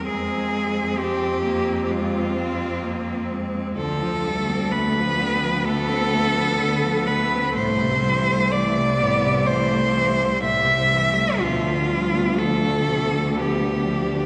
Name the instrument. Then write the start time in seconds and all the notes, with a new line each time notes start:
cello
0.05 F2 G#3 C4 G#4
0.98 C4 G4
1.44 A#3
1.84 G4
1.90 G#3 F4
2.37 C4
2.83 A#3
3.31 G#3
3.77 D2 D3 F3 A4
4.03 F3
4.24 G3 A3
4.50 C4
4.71 A3 B4
4.97 F3
5.19 D3 B3
5.43 F3
5.64 A3 A4
5.89 C4
6.12 A3
6.36 F3
6.59 D3
6.84 F3
7.07 A3 B4
7.34 C4
7.53 C2 A2 A3 C5
7.82 C3
8.00 G3
8.06 E3
8.30 A3
8.49 A3 D5
8.54 E3
8.77 C3
8.98 A2 B3
9.24 C3
9.45 E3 A3 C5
9.71 A3
9.95 E3
10.18 C3
10.42 A2 G3 E5
10.66 C3
10.92 E3
11.15 A3
11.39 D2 B2 F3 F4
11.65 D3
11.89 F3 G3
12.15 B3
12.36 F3 A3 A4
12.64 D3
12.88 B2
13.12 D3
13.36 F3 B3 G4
13.62 B3
13.86 F3 D4
14.12 D3